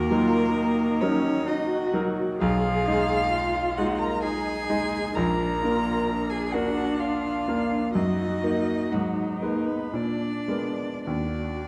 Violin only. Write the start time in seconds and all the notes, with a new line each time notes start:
Already playing: A#4
1.01 C#5
1.48 D#5
2.41 F5
3.78 F#5
3.98 A#5
4.22 G#5
5.15 A#5
6.29 G#5
6.52 F#5
6.99 F5
7.93 D#5
8.92 F#4
9.41 A#4
9.66 B4
9.95 D5
11.06 D5